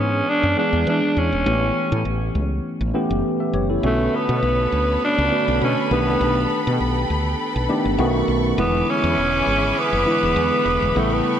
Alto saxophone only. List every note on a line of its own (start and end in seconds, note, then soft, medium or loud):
0.00 0.31 C#4 loud
0.29 0.58 D4 loud
0.59 0.85 D4 loud
0.89 1.20 D4 loud
1.18 2.06 C#4 loud
3.85 4.17 A3 loud
4.15 5.03 B3 medium
5.04 5.59 D4 loud
5.64 5.90 C#4 medium
5.93 6.77 B3 loud
8.59 8.91 B3 loud
8.89 9.80 C#4 loud
9.78 10.99 B3 loud
10.97 11.15 A3 loud
11.13 11.40 B3 loud